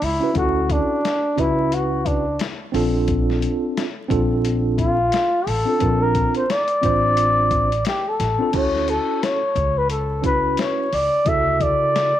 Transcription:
0.02 C#2 E4, open hi-hat
0.20 C#4 E4 F#4 B4
0.34 D2 C#4 E4 F4 F#4 A4, kick, closed hi-hat
0.43 F#4
0.70 D4, kick, closed hi-hat
1.05 snare, closed hi-hat
1.36 C#2 C#4 E4 F#4 B4, kick, closed hi-hat
1.72 F#4, closed hi-hat
2.06 D4, kick, closed hi-hat
2.39 snare, closed hi-hat
2.72 A#1 C4 D4 F4 A4, open hi-hat
3.08 kick, closed hi-hat
3.30 snare
3.42 closed hi-hat
3.77 snare, closed hi-hat
4.08 A#1 C4 D4 F4 A4, kick, closed hi-hat
4.45 closed hi-hat
4.78 F4, kick, closed hi-hat
5.12 snare, closed hi-hat
5.47 A1 A4, open hi-hat
5.65 C4 D4 F4 A4
5.79 A#1 C4 D4 F4 A#4, kick, closed hi-hat
6.03 A#4
6.15 kick, closed hi-hat
6.35 C5, closed hi-hat
6.50 D5, snare, closed hi-hat
6.68 closed hi-hat
6.81 A1 C4 D4 F4 C5, kick, closed hi-hat
7.17 closed hi-hat
7.51 kick, closed hi-hat
7.72 closed hi-hat
7.85 G4, snare, closed hi-hat
8.08 A4
8.20 A1, snare, closed hi-hat
8.39 C4 D4 F4 A4
8.52 D2 C#4 E4 F#4 A4 C#5, kick, closed hi-hat, crash
8.75 snare
8.88 A4, closed hi-hat
9.23 C#5, snare, closed hi-hat
9.56 C#2, kick, closed hi-hat
9.78 B4
9.90 A4, closed hi-hat
10.22 C#4 E4 F#4 B4, kick, closed hi-hat
10.57 C#5, snare, closed hi-hat
10.92 C#2 D5, open hi-hat
11.25 D2 C#3 E4 F#4 A4 E5, kick, closed hi-hat
11.60 D5, kick, closed hi-hat
11.96 snare, closed hi-hat

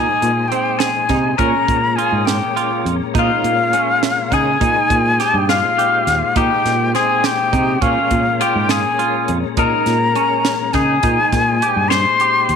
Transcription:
Already playing: A#2 G#3 D#4 G#4 C5 G#5
0.22 A#2, closed hi-hat
0.48 C4 G4 G5, closed hi-hat
0.77 G#4 G#5, snare, closed hi-hat
1.09 C3 D#4, kick, snare, closed hi-hat
1.37 A#2 G#3 C#4 A#4 A#5, kick, closed hi-hat
1.41 A#4
1.68 A#2, kick, closed hi-hat
1.96 F4 G#4 G#5, closed hi-hat
2.12 G#2
2.25 G4 G5, snare, closed hi-hat
2.56 F4, closed hi-hat
2.85 F2, closed hi-hat
3.15 A#2 D#4 F5, kick, closed hi-hat
3.19 F4
3.44 A#2, closed hi-hat
3.73 C#4, closed hi-hat
4.03 snare, closed hi-hat
4.32 C#3 D#4 G#4 G#5, kick, closed hi-hat
4.59 A#2 G#3 D#4 C5, kick, closed hi-hat
4.90 A#2, kick, closed hi-hat
5.20 G4, snare, closed hi-hat
5.33 G2
5.49 F4 F5, snare, closed hi-hat
5.78 G4, closed hi-hat
6.07 D#2, snare, closed hi-hat
6.36 A#2 D#4 G4 G5, kick, closed hi-hat
6.65 A#2, snare, closed hi-hat
6.95 C4 G#4 G#5, snare, closed hi-hat
7.24 G4 G5, snare, closed hi-hat
7.53 C3 D#4, kick, closed hi-hat
7.80 A#2 G#3 C#4 F4 A#4 F5, kick, closed hi-hat
8.11 A#2, kick, closed hi-hat
8.41 F4 G4 G5, closed hi-hat
8.55 G#2
8.69 G#4 G#5, snare, closed hi-hat
8.99 F4, closed hi-hat
9.28 F2, closed hi-hat
9.57 A#2 D#4 A#4 A#5, kick, closed hi-hat
9.86 A#2, snare, closed hi-hat
10.15 C#4, closed hi-hat
10.45 snare, closed hi-hat
10.73 C#3 D#4 G#4 G#5, kick, snare, closed hi-hat
11.03 A#2 G#3 D#4 C5, kick, closed hi-hat
11.32 A#2, kick, snare, closed hi-hat
11.62 G4, closed hi-hat
11.76 G2
11.89 C5 C6, snare, closed hi-hat
12.20 G4, closed hi-hat
12.49 D#2, closed hi-hat

